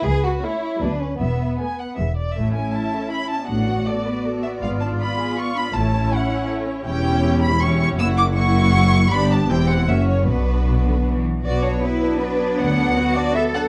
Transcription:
<<
  \new Staff \with { instrumentName = "Violin section" } { \time 3/4 \key a \major \tempo 4 = 158 b'4 cis''4 b'4 | e''4 gis''8 fis''8 e''8 d''8 | e''8 gis''8 a''4 b''8 a''8 | fis''4 d''4 r8 e''8 |
eis''8 a''8 b''4 cis'''8 b''8 | a''4 fis''4 r4 | \key b \minor g''4. b''8 cis'''8 cis'''8 | e'''8 d'''8 cis'''2 |
b''8 a''8 g''8 fis''8 e''8 cis''8 | b'2 r4 | d''8 cis''8 b'4 b'4 | fis''4. d''8 e''8 fis''8 | }
  \new Staff \with { instrumentName = "Violin section" } { \time 3/4 \key a \major << { gis'8 fis'8 e'4 d'8 cis'8 | b2 r4 | e''2. | d''2.~ |
d''2. | cis''2. | \key b \minor cis''2 cis''4 | fis''4 fis''2 |
d''4 c''4 cis''4 | b'2~ b'8 r8 | b'2.~ | b'2. | } \\ { r2. | r2. | a8 cis'8 e'8 a'8 e'8 cis'8 | d'8 fis'8 a'8 b'8 a'8 fis'8 |
b8 d'8 eis'8 gis'8 eis'8 d'8 | a8 cis'8 e'8 cis'8 a8 cis'8 | g'2 g'4 | fis'4 fis'2 |
g'4 g'4 fis'4 | fis'2~ fis'8 r8 | b8 d'8 b8 d'8 b8 d'8 | b8 d'8 b8 d'8 b8 d'8 | } >> }
  \new Staff \with { instrumentName = "Viola section" } { \time 3/4 \key a \major << { r4 cis'4 b4 | r4 b4 b4 | e'2. | fis'2. |
eis'2. | e'2. | \key b \minor e'2 e'4 | e'4 e'2 |
d'4 e'4 cis'4 | d'2~ d'8 r8 | b2.~ | b2. | } \\ { r4 a4 fis4 | r4 a4 gis4 | cis'2. | b2.~ |
b2. | cis'2. | cis'2 cis'4 | ais4 ais2 |
b4 c'4 ais4 | b2~ b8 r8 | fis2.~ | fis2. | } >> }
  \new Staff \with { instrumentName = "Cello section" } { \clef bass \time 3/4 \key a \major cis,4 r4 d,4 | e,4 r4 e,4 | a,4 r2 | a,4 r2 |
gis,4 r2 | a,4 r2 | \key b \minor e,2. | fis,2. |
g,4 e,4 fis,4 | b,4 b,8 d8 e4 | fis'4 e'4 d'4~ | d'4 fis'4 a'4 | }
  \new Staff \with { instrumentName = "Double bass section" } { \clef bass \time 3/4 \key a \major cis,4 r4 d,4 | e,,4 r4 e,,4 | a,,4 r2 | a,,4 r2 |
gis,,4 r2 | a,,4 r2 | \key b \minor e,,2. | fis,,2. |
g,,4 e,,4 fis,,4 | b,,2~ b,,8 r8 | b,,4 r2 | d,4 r2 | }
>>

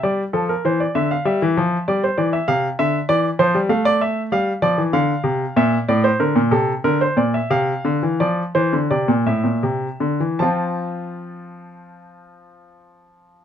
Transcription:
<<
  \new Staff \with { instrumentName = "Grand piano" } { \time 4/4 \key f \mixolydian \tempo 4 = 94 d''8 a'16 bes'16 c''16 d''16 e''16 f''16 e''4 d''16 c''16 d''16 e''16 | f''8 e''8 d''8 c''8 f''16 d''16 e''8 f''8 d''8 | \key f \major f''4 e''8 d''16 c''16 bes'8 a'8 bes'16 c''16 d''16 e''16 | f''4 d''8 c''8 d''8 e''4. |
<c' f' a''>1 | }
  \new Staff \with { instrumentName = "Grand piano" } { \clef bass \time 4/4 \key f \mixolydian g8 f8 e8 d8 g16 e16 f8 g8 e8 | c8 d8 e8 f16 g16 a4 g8 f16 e16 | \key f \major d8 c8 bes,8 a,8 d16 bes,16 c8 d8 bes,8 | c8 d16 e16 f8 e16 d16 c16 bes,16 a,16 bes,16 c8 d16 e16 |
f1 | }
>>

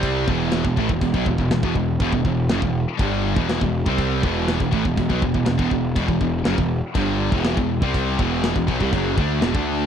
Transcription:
<<
  \new Staff \with { instrumentName = "Distorted electric guitar" } { \clef bass \time 4/4 \key e \minor \tempo 4 = 121 <c g c'>8 <e, b, e>8. <e, b,>16 <a, e>16 <e, b,>16 <e, b,>16 <b, fis>16 <e, b,>16 <e, b,>16 <e, b,>16 <e, b,>16 <e, b,>8 | <e, b,>16 <e, b,>16 <e, b,>8 <fis, cis>16 <e, b,>8 r16 <g, d g>8. <e, b, e>8 <e, b,>8 <c g c'>16~ | <c g c'>8 <e, b, e>8. <e, b,>16 <a, e>16 <e, b,>16 <e, b,>16 <b, fis>16 <e, b,>16 <e, b,>16 <e, b,>16 <e, b,>16 <e, b,>8 | <e, b,>16 <e, b,>16 <e, b,>8 <fis, cis>16 <e, b,>8 r16 <g, d g>8. <e, b, e>8 <e, b,>8 <c g c'>16~ |
<c g c'>8 <e, b, e>8. <e, b,>16 <b, fis>16 <c g>16 <fis, cis fis>8 <d a d'>8 <e, b,>16 <d a d'>8. | }
  \new Staff \with { instrumentName = "Distorted electric guitar" } { \clef bass \time 4/4 \key e \minor <c g c'>8 <e, b, e>8. <e, b,>16 <a, e>16 <e, b,>16 <e, b,>16 <b, fis>16 <e, b,>16 <e, b,>16 <e, b,>16 <e, b,>16 <e, b,>8 | <e, b,>16 <e, b,>16 <e, b,>8 <fis, cis>16 <e, b,>8 r16 <g, d g>8. <e, b, e>8 <e, b,>8 <c g c'>16~ | <c g c'>8 <e, b, e>8. <e, b,>16 <a, e>16 <e, b,>16 <e, b,>16 <b, fis>16 <e, b,>16 <e, b,>16 <e, b,>16 <e, b,>16 <e, b,>8 | <e, b,>16 <e, b,>16 <e, b,>8 <fis, cis>16 <e, b,>8 r16 <g, d g>8. <e, b, e>8 <e, b,>8 <c g c'>16~ |
<c g c'>8 <e, b, e>8. <e, b,>16 <b, fis>16 <c g>16 <fis, cis fis>8 <d a d'>8 <e, b,>16 <d a d'>8. | }
  \new Staff \with { instrumentName = "Distorted electric guitar" } { \clef bass \time 4/4 \key e \minor <c g c'>8 <e, b, e>8. <e, b,>16 <a, e>16 <e, b,>16 <e, b,>16 <b, fis>16 <e, b,>16 <e, b,>16 <e, b,>16 <e, b,>16 <e, b,>8 | <e, b,>16 <e, b,>16 <e, b,>8 <fis, cis>16 <e, b,>8 r16 <g, d g>8. <e, b, e>8 <e, b,>8 <c g c'>16~ | <c g c'>8 <e, b, e>8. <e, b,>16 <a, e>16 <e, b,>16 <e, b,>16 <b, fis>16 <e, b,>16 <e, b,>16 <e, b,>16 <e, b,>16 <e, b,>8 | <e, b,>16 <e, b,>16 <e, b,>8 <fis, cis>16 <e, b,>8 r16 <g, d g>8. <e, b, e>8 <e, b,>8 <c g c'>16~ |
<c g c'>8 <e, b, e>8. <e, b,>16 <b, fis>16 <c g>16 <fis, cis fis>8 <d a d'>8 <e, b,>16 <d a d'>8. | }
  \new Staff \with { instrumentName = "Picked electric bass" } { \clef bass \time 4/4 \key e \minor c,8 e,,8. e,,16 a,,16 e,,16 e,,16 b,,16 e,,16 e,,16 e,,16 e,,16 e,,8 | e,,16 e,,16 e,,8 fis,,16 e,,8 r16 g,,8. e,,8 e,,8 c,16~ | c,8 e,,8. e,,16 a,,16 e,,16 e,,16 b,,16 e,,16 e,,16 e,,16 e,,16 e,,8 | e,,16 e,,16 e,,8 fis,,16 e,,8 r16 g,,8. e,,8 e,,8 c,16~ |
c,8 e,,8. e,,16 b,,16 c,16 fis,,8 d,8 e,,16 d,8. | }
  \new DrumStaff \with { instrumentName = "Drums" } \drummode { \time 4/4 <cymc bd>8 bd8 <cymc sn>16 bd16 bd16 bd16 <cymc bd>16 bd16 bd16 bd16 <cymc sn>16 bd16 bd8 | <cymc bd>16 bd16 bd8 <cymc sn>16 bd8. <cymc bd>8. bd16 <cymc sn>16 bd8 bd16 | <cymc bd>8 bd8 <cymc sn>16 bd16 bd16 bd16 <cymc bd>16 bd16 bd16 bd16 <cymc sn>16 bd16 bd8 | <cymc bd>16 bd16 bd8 <cymc sn>16 bd8. <cymc bd>8. bd16 <cymc sn>16 bd8 bd16 |
<cymc bd>8 bd8 <cymc sn>16 bd16 bd16 bd16 <cymc bd>8 bd8 <cymc sn>16 bd8. | }
>>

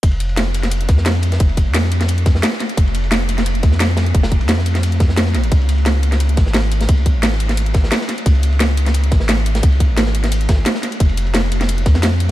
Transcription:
<<
  \new Staff \with { instrumentName = "Sub bass" } { \clef bass \time 4/4 \key des \lydian \tempo 4 = 175 f,,2~ f,,8 f,4. | f,,8. f,2~ f,16 r4 | f,,2~ f,,8 f,4. | f,,8. f,2~ f,8. bes,,16 g,,16 |
des,2~ des,8 aes,,4. | des,8. aes,,2~ aes,,16 r4 | des,2~ des,8 aes,,4. | des,8. aes,,4.~ aes,,16 aes,,8 r4 |
f,,2~ f,,8 f,4. | }
  \new DrumStaff \with { instrumentName = "Drums" } \drummode { \time 4/4 <hh bd cymr>16 cymr16 <hh cymr>16 cymr16 <hh cymr sn>8 <hh cymr>16 <hh sn>16 <hh cymr>16 hh16 <hh bd cymr sn>16 sn16 <hh cymr sn>16 cymr16 <hh cymr>16 <hh sn>16 | <hh bd cymr>16 cymr16 <hh bd cymr>8 <hh cymr sn>16 sn16 <hh cymr>16 <hh sn>16 <hh cymr>16 hh16 <hh bd cymr sn>16 sn16 <hh cymr sn>16 sn16 <hh cymr sn>16 <hh cymr>16 | <hh bd cymr>16 cymr16 <hh cymr>16 cymr16 <hh cymr sn>8 <hh cymr>16 <hh sn>16 <hh cymr>16 hh16 <hh bd cymr sn>16 sn16 <hh cymr sn>16 cymr16 <hh cymr sn>16 hh16 | <hh bd cymr>16 <cymr sn>16 <hh bd>16 cymr16 <hh cymr sn>16 sn16 <hh cymr>16 <hh sn>16 <hh cymr>16 hh16 <hh bd cymr sn>16 sn16 <hh cymr sn>16 sn16 <hh cymr sn>16 <hh cymr>16 |
<hh bd cymr>16 cymr16 <hh cymr>16 cymr16 <hh cymr sn>8 <hh cymr>16 <hh sn>16 <hh cymr>16 hh16 <hh bd cymr sn>16 sn16 <hh cymr sn>16 cymr16 <hh cymr>16 <hh sn>16 | <hh bd cymr>16 cymr16 <hh bd cymr>8 <hh cymr sn>16 sn16 <hh cymr>16 <hh sn>16 <hh cymr>16 hh16 <hh bd cymr sn>16 sn16 <hh cymr sn>16 sn16 <hh cymr sn>16 <hh cymr>16 | <hh bd cymr>16 cymr16 <hh cymr>16 cymr16 <hh cymr sn>8 <hh cymr>16 <hh sn>16 <hh cymr>16 hh16 <hh bd cymr sn>16 sn16 <hh cymr sn>16 cymr16 <hh cymr>16 <hh sn>16 | <hh bd cymr>16 cymr16 <hh bd cymr>8 <hh cymr sn>16 sn16 <hh cymr>16 <hh sn>16 <hh cymr>16 hh16 <hh bd cymr sn>8 <hh cymr sn>16 sn16 <hh cymr sn>16 <hh cymr>16 |
<hh bd cymr>16 cymr16 <hh cymr>16 cymr16 <hh cymr sn>8 <hh cymr>16 <hh sn>16 <hh cymr>16 hh16 <hh bd cymr sn>16 sn16 <hh cymr sn>16 cymr16 <hh cymr>8 | }
>>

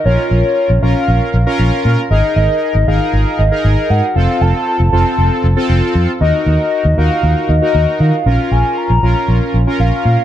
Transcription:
<<
  \new Staff \with { instrumentName = "Soft synth lead" } { \time 4/4 \key bes \minor \tempo 4 = 117 des''4. f''2 r8 | ees''8 ees''4 f''4 ees''4 ges''8 | f''8 a''8 a''2 r4 | ees''8 ees''4 f''4 ees''4 f''8~ |
f''8 aes''8 bes''4 r4 f''4 | }
  \new Staff \with { instrumentName = "Analog polysynth" } { \time 4/4 \key bes \minor <des' f' bes'>4~ <des' f' bes'>16 r16 <des' f' bes'>4 r16 <des' f' bes'>4 r16 | <ees' aes' bes'>4~ <ees' aes' bes'>16 r16 <ees' aes' bes'>4 r16 <ees' aes' bes'>4 r16 | <c' f' a'>4~ <c' f' a'>16 r16 <c' f' a'>4 r16 <c' f' a'>4 r16 | <ees' ges' bes'>4~ <ees' ges' bes'>16 r16 <ees' ges' bes'>4 r16 <ees' ges' bes'>4 r16 |
<des' f' bes'>4~ <des' f' bes'>16 r16 <des' f' bes'>4 r16 <des' f' bes'>4 r16 | }
  \new Staff \with { instrumentName = "Fingered electric bass" } { \clef bass \time 4/4 \key bes \minor bes,,16 r16 bes,,16 r8 bes,,16 bes,,16 r16 bes,,16 r16 bes,,16 r16 bes,,16 r16 bes,16 r16 | aes,,16 r16 aes,,16 r8 aes,,16 aes,,16 r16 aes,,16 r16 aes,,16 r16 aes,,16 r16 aes,16 r16 | f,,16 r16 f,,16 r8 f,,16 f,,16 r16 f,,16 r16 f,,16 r16 f,,16 r16 f,16 r16 | ees,16 r16 ees,16 r8 ees,16 ees,16 r16 ees,16 r16 ees,16 r16 ees,16 r16 ees16 r16 |
bes,,16 r16 bes,,16 r8 bes,,16 bes,,16 r16 bes,,16 r16 bes,,16 r16 bes,,16 r16 bes,16 r16 | }
>>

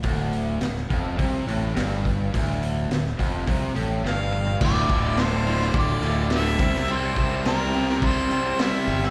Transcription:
<<
  \new Staff \with { instrumentName = "Harmonica" } { \time 4/4 \key d \minor \tempo 4 = 105 r1 | r2. f''4 | d''4 c''4 d''4 e''4 | c''4 bes'4 c''4 e''4 | }
  \new Staff \with { instrumentName = "Tonewheel organ" } { \time 4/4 \key d \minor r1 | r1 | <a d' f' d''>2.~ <a d' f' d''>8 <g c' e' c''>8~ | <g c' e' c''>1 | }
  \new Staff \with { instrumentName = "Overdriven electric guitar" } { \clef bass \time 4/4 \key d \minor d,4 d,8 f,8 c8 a,8 g,4 | d,4 d,8 f,8 c8 a,8 g,4 | <d, a, d>8 <d, a, d>8 <d, a, d>8 <d, a, d>8 <d, a, d>8 <d, a, d>8 <d, a, d>8 <c g c'>8 | <c g c'>8 <c g c'>8 <c g c'>8 <c g c'>8 <c g c'>8 <c g c'>8 <c g c'>8 <c g c'>8 | }
  \new Staff \with { instrumentName = "Overdriven electric guitar" } { \clef bass \time 4/4 \key d \minor d,4 d,8 f,8 c8 a,8 g,4 | d,4 d,8 f,8 c8 a,8 g,4 | <d, a, d>8 <d, a, d>8 <d, a, d>8 <d, a, d>8 <d, a, d>8 <d, a, d>8 <d, a, d>8 <c g c'>8 | <c g c'>8 <c g c'>8 <c g c'>8 <c g c'>8 <c g c'>8 <c g c'>8 <c g c'>8 <c g c'>8 | }
  \new Staff \with { instrumentName = "Fingered electric bass" } { \clef bass \time 4/4 \key d \minor d,,4 d,,8 f,,8 c,8 a,,8 g,,4 | d,,4 d,,8 f,,8 c,8 a,,8 g,,4 | d,,8 d,,4. d,,8 d,,4 c,8~ | c,8 c,4. c,8 r4 g,,8 | }
  \new DrumStaff \with { instrumentName = "Drums" } \drummode { \time 4/4 <hho bd>8 hho8 <hho sn>16 sn16 <hho bd>8 <hho bd>8 hho8 <hho sn>16 sn16 <hho bd>8 | <hho bd>8 hho8 <hho sn>16 sn16 <hho bd>8 <hho bd>8 hho8 sn8 toml16 tomfh16 | <cymc bd>8 <cymc bd>8 <cymc sn>8 cymc16 sn16 <cymc bd>8 cymc8 <cymc sn>8 <cymc bd>16 sn16 | cymc8 <cymc bd>8 <cymc sn>8 cymc16 sn16 <cymc bd>8 cymc8 <cymc sn>8 cymc16 sn16 | }
>>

